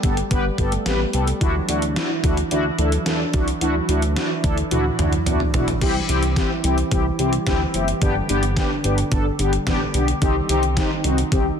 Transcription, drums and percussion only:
0.03 kick medium
0.03 closed hi-hat medium
0.17 closed hi-hat medium
0.31 kick medium
0.31 closed hi-hat medium
0.58 kick medium
0.58 closed hi-hat medium
0.72 closed hi-hat medium
0.86 snare loud
0.86 closed hi-hat medium
1.13 closed hi-hat medium
1.27 closed hi-hat medium
1.41 kick loud
1.41 closed hi-hat medium
1.69 closed hi-hat medium
1.82 closed hi-hat soft
1.96 snare loud
1.96 closed hi-hat medium
2.24 kick medium
2.24 closed hi-hat medium
2.37 closed hi-hat medium
2.51 closed hi-hat medium
2.79 closed hi-hat medium
2.92 closed hi-hat medium
3.06 snare loud
3.06 closed hi-hat medium
3.34 kick medium
3.34 closed hi-hat medium
3.48 closed hi-hat medium
3.61 closed hi-hat medium
3.89 closed hi-hat medium
4.02 closed hi-hat soft
4.16 snare loud
4.16 closed hi-hat medium
4.44 kick medium
4.44 closed hi-hat medium
4.58 closed hi-hat soft
4.71 closed hi-hat medium
4.71 high tom medium
4.99 closed hi-hat medium
4.99 mid tom medium
5.13 closed hi-hat medium
5.26 closed hi-hat medium
5.26 mid tom medium
5.40 mid tom medium
5.54 closed hi-hat medium
5.54 floor tom medium
5.68 closed hi-hat medium
5.68 floor tom medium
5.81 kick loud
5.81 closed hi-hat medium
5.81 crash medium
6.09 closed hi-hat medium
6.23 closed hi-hat soft
6.36 kick loud
6.36 snare loud
6.36 closed hi-hat medium
6.64 closed hi-hat medium
6.78 closed hi-hat medium
6.91 kick loud
6.91 closed hi-hat medium
7.19 closed hi-hat medium
7.33 closed hi-hat medium
7.47 kick loud
7.47 snare loud
7.47 closed hi-hat medium
7.74 closed hi-hat medium
7.88 closed hi-hat medium
8.02 kick loud
8.02 closed hi-hat medium
8.29 closed hi-hat medium
8.43 closed hi-hat soft
8.57 kick loud
8.57 snare loud
8.57 closed hi-hat medium
8.84 closed hi-hat medium
8.98 closed hi-hat medium
9.12 kick loud
9.12 closed hi-hat medium
9.39 closed hi-hat medium
9.53 closed hi-hat medium
9.67 kick loud
9.67 snare loud
9.67 closed hi-hat medium
9.94 closed hi-hat medium
10.08 closed hi-hat medium
10.22 kick loud
10.22 closed hi-hat medium
10.49 closed hi-hat medium
10.63 closed hi-hat soft
10.77 kick loud
10.77 snare loud
10.77 closed hi-hat medium
11.04 closed hi-hat medium
11.18 closed hi-hat medium
11.32 kick loud
11.32 closed hi-hat medium

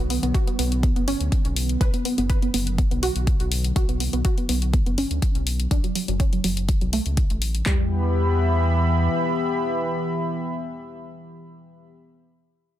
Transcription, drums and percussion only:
0.10 open hi-hat loud
0.23 closed hi-hat soft
0.34 kick loud
0.34 closed hi-hat medium
0.47 closed hi-hat soft
0.59 open hi-hat loud
0.72 closed hi-hat soft
0.83 kick loud
0.83 closed hi-hat medium
0.96 closed hi-hat soft
1.08 open hi-hat loud
1.21 closed hi-hat soft
1.32 kick loud
1.32 closed hi-hat medium
1.45 closed hi-hat soft
1.57 open hi-hat loud
1.69 closed hi-hat soft
1.81 kick loud
1.81 closed hi-hat medium
1.94 closed hi-hat soft
2.05 open hi-hat medium
2.18 closed hi-hat soft
2.30 kick loud
2.30 closed hi-hat medium
2.42 closed hi-hat soft
2.54 open hi-hat loud
2.67 closed hi-hat soft
2.78 kick loud
2.78 closed hi-hat medium
2.91 closed hi-hat soft
3.03 open hi-hat loud
3.16 closed hi-hat soft
3.27 kick loud
3.27 closed hi-hat medium
3.40 closed hi-hat soft
3.52 open hi-hat loud
3.64 closed hi-hat soft
3.76 kick loud
3.76 closed hi-hat medium
3.89 closed hi-hat soft
4.00 open hi-hat medium
4.13 closed hi-hat soft
4.25 kick medium
4.25 closed hi-hat medium
4.38 closed hi-hat soft
4.49 open hi-hat medium
4.62 closed hi-hat soft
4.73 kick loud
4.73 closed hi-hat medium
4.86 closed hi-hat soft
4.98 open hi-hat medium
5.11 closed hi-hat soft
5.22 kick medium
5.22 closed hi-hat medium
5.35 closed hi-hat soft
5.47 open hi-hat loud
5.60 closed hi-hat soft
5.71 kick loud
5.71 closed hi-hat medium
5.84 closed hi-hat soft
5.95 open hi-hat medium
6.08 closed hi-hat soft
6.20 kick medium
6.20 closed hi-hat medium
6.33 closed hi-hat soft
6.44 open hi-hat loud
6.57 closed hi-hat soft
6.69 kick loud
6.69 closed hi-hat medium
6.81 closed hi-hat soft
6.93 open hi-hat medium
7.06 closed hi-hat soft
7.17 kick medium
7.17 closed hi-hat medium
7.30 closed hi-hat soft
7.42 open hi-hat loud
7.55 closed hi-hat soft
7.66 kick loud
7.66 clap medium

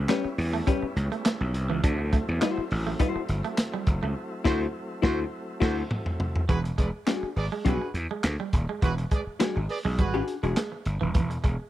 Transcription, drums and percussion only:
0.09 snare loud
0.09 clap medium
0.09 closed hi-hat medium
0.38 open hi-hat medium
0.67 kick medium
0.67 closed hi-hat medium
0.97 closed hi-hat medium
1.12 closed hi-hat soft
1.25 snare loud
1.25 clap medium
1.25 closed hi-hat loud
1.54 closed hi-hat medium
1.84 kick loud
1.84 closed hi-hat medium
2.13 kick medium
2.13 closed hi-hat medium
2.42 snare loud
2.42 clap loud
2.42 closed hi-hat loud
2.71 open hi-hat medium
2.99 kick medium
2.99 closed hi-hat loud
3.29 closed hi-hat medium
3.44 closed hi-hat soft
3.57 snare loud
3.57 clap medium
3.57 closed hi-hat loud
3.87 kick loud
3.87 closed hi-hat medium
4.45 kick loud
4.45 snare loud
4.45 crash medium
5.03 kick loud
5.03 snare loud
5.61 kick loud
5.61 snare loud
5.61 crash medium
5.91 mid tom loud
6.06 floor tom loud
6.20 floor tom loud
6.36 floor tom loud
6.49 kick loud
6.49 closed hi-hat medium
6.65 closed hi-hat medium
6.78 kick medium
6.78 closed hi-hat medium
7.07 snare loud
7.07 clap loud
7.07 closed hi-hat loud
7.37 open hi-hat medium
7.66 kick medium
7.66 closed hi-hat loud
7.95 closed hi-hat medium
8.23 snare loud
8.23 clap loud
8.23 closed hi-hat loud
8.53 kick medium
8.53 closed hi-hat medium
8.82 kick loud
8.82 closed hi-hat medium
8.98 closed hi-hat medium
9.11 kick loud
9.11 closed hi-hat medium
9.40 snare loud
9.40 clap loud
9.40 closed hi-hat loud
9.69 open hi-hat medium
9.98 kick medium
9.98 closed hi-hat medium
10.28 closed hi-hat medium
10.44 closed hi-hat soft
10.56 snare loud
10.56 clap medium
10.56 closed hi-hat loud
10.85 closed hi-hat medium
11.14 kick loud
11.14 closed hi-hat medium
11.31 closed hi-hat medium
11.44 kick medium
11.44 closed hi-hat medium

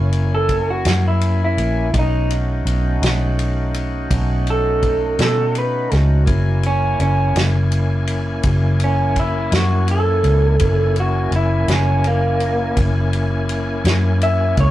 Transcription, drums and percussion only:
0.12 ride soft
0.49 kick medium
0.49 ride medium
0.85 snare loud
0.85 ride medium
1.21 ride medium
1.58 ride medium
1.94 kick medium
1.94 ride medium
2.30 ride medium
2.67 ride medium
3.03 snare loud
3.03 ride medium
3.39 ride medium
3.74 ride medium
4.11 kick loud
4.11 ride medium
4.47 ride medium
4.82 kick medium
4.82 ride medium
5.19 snare loud
5.19 ride medium
5.55 ride medium
5.91 snare soft
5.91 ride medium
6.27 kick loud
6.27 ride medium
6.63 ride medium
7.00 ride medium
7.36 snare loud
7.36 ride medium
7.72 ride medium
8.07 ride medium
8.43 kick loud
8.43 ride medium
8.80 ride medium
9.16 kick medium
9.16 ride medium
9.52 snare loud
9.52 ride medium
9.88 ride medium
10.24 ride medium
10.59 kick loud
10.59 ride medium
10.96 ride medium
11.32 ride medium
11.68 snare loud
11.68 ride medium
12.04 ride medium
12.40 ride medium
12.77 kick loud
12.77 ride medium
13.13 ride medium
13.49 ride medium
13.85 snare loud
13.85 ride medium
14.21 ride medium
14.57 kick medium
14.57 ride medium

